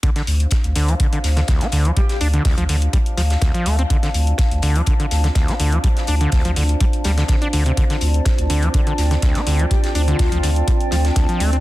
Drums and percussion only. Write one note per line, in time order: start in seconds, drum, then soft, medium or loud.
0.03 kick loud
0.03 closed hi-hat medium
0.16 snare soft
0.16 closed hi-hat soft
0.27 closed hi-hat medium
0.27 open hi-hat medium
0.40 closed hi-hat soft
0.51 kick loud
0.51 snare loud
0.51 closed hi-hat medium
0.64 closed hi-hat soft
0.76 closed hi-hat medium
0.76 open hi-hat medium
0.88 closed hi-hat soft
1.00 kick loud
1.00 closed hi-hat medium
1.13 closed hi-hat soft
1.24 snare soft
1.24 closed hi-hat medium
1.24 open hi-hat medium
1.37 snare soft
1.37 closed hi-hat soft
1.48 kick loud
1.48 snare loud
1.48 closed hi-hat medium
1.61 snare soft
1.61 closed hi-hat soft
1.72 closed hi-hat medium
1.72 open hi-hat loud
1.85 closed hi-hat soft
1.97 kick loud
1.97 closed hi-hat medium
2.09 snare soft
2.09 closed hi-hat soft
2.21 closed hi-hat medium
2.21 open hi-hat loud
2.34 closed hi-hat soft
2.45 kick loud
2.45 snare loud
2.45 closed hi-hat medium
2.45 open hi-hat medium
2.58 closed hi-hat soft
2.69 closed hi-hat medium
2.69 open hi-hat loud
2.82 closed hi-hat soft
2.93 kick loud
2.93 closed hi-hat medium
3.06 closed hi-hat soft
3.17 snare medium
3.17 closed hi-hat medium
3.17 open hi-hat loud
3.30 snare soft
3.30 closed hi-hat soft
3.42 kick loud
3.42 snare loud
3.42 closed hi-hat medium
3.55 closed hi-hat soft
3.66 closed hi-hat medium
3.66 open hi-hat loud
3.79 closed hi-hat soft
3.90 kick loud
3.90 closed hi-hat medium
4.03 snare soft
4.03 closed hi-hat soft
4.14 closed hi-hat medium
4.14 open hi-hat loud
4.27 closed hi-hat soft
4.38 kick loud
4.38 snare loud
4.38 closed hi-hat medium
4.51 closed hi-hat soft
4.62 closed hi-hat medium
4.62 open hi-hat loud
4.76 closed hi-hat soft
4.86 kick loud
4.86 closed hi-hat medium
5.00 closed hi-hat soft
5.11 snare soft
5.11 closed hi-hat medium
5.11 open hi-hat loud
5.24 snare soft
5.24 closed hi-hat soft
5.35 kick loud
5.35 snare loud
5.35 closed hi-hat medium
5.48 snare soft
5.48 closed hi-hat soft
5.60 closed hi-hat medium
5.60 open hi-hat loud
5.72 closed hi-hat soft
5.84 kick loud
5.84 closed hi-hat medium
5.97 snare soft
5.97 closed hi-hat soft
6.07 closed hi-hat medium
6.07 open hi-hat loud
6.21 closed hi-hat soft
6.32 kick loud
6.32 snare loud
6.32 closed hi-hat medium
6.32 open hi-hat medium
6.45 closed hi-hat soft
6.56 closed hi-hat medium
6.56 open hi-hat loud
6.69 closed hi-hat soft
6.80 kick loud
6.80 closed hi-hat medium
6.93 closed hi-hat soft
7.04 snare soft
7.04 closed hi-hat medium
7.04 open hi-hat loud
7.18 snare medium
7.18 closed hi-hat soft
7.28 kick loud
7.28 snare loud
7.28 closed hi-hat medium
7.42 closed hi-hat soft
7.53 closed hi-hat medium
7.53 open hi-hat loud
7.66 closed hi-hat soft
7.77 kick loud
7.77 closed hi-hat medium
7.90 snare soft
7.90 closed hi-hat soft
8.01 closed hi-hat medium
8.01 open hi-hat loud
8.14 closed hi-hat soft
8.25 kick loud
8.25 snare loud
8.25 closed hi-hat medium
8.38 closed hi-hat soft
8.50 closed hi-hat medium
8.50 open hi-hat loud
8.62 closed hi-hat soft
8.74 kick loud
8.74 closed hi-hat medium
8.87 closed hi-hat soft
8.98 snare soft
8.98 closed hi-hat medium
8.98 open hi-hat loud
9.11 snare soft
9.11 closed hi-hat soft
9.22 kick loud
9.22 snare loud
9.22 closed hi-hat medium
9.35 snare soft
9.35 closed hi-hat soft
9.47 closed hi-hat medium
9.47 open hi-hat loud
9.59 closed hi-hat soft
9.71 kick loud
9.71 closed hi-hat medium
9.84 snare soft
9.84 closed hi-hat soft
9.95 closed hi-hat medium
9.95 open hi-hat medium
10.08 closed hi-hat soft
10.19 kick loud
10.19 snare loud
10.19 closed hi-hat medium
10.19 open hi-hat medium
10.32 closed hi-hat soft
10.43 closed hi-hat medium
10.43 open hi-hat medium
10.56 closed hi-hat soft
10.68 kick loud
10.68 closed hi-hat medium
10.80 closed hi-hat soft
10.91 snare soft
10.91 closed hi-hat medium
10.91 open hi-hat medium
11.05 snare soft
11.05 closed hi-hat soft
11.16 kick loud
11.16 snare loud
11.16 closed hi-hat medium
11.29 closed hi-hat soft
11.40 closed hi-hat medium
11.40 open hi-hat medium
11.53 closed hi-hat soft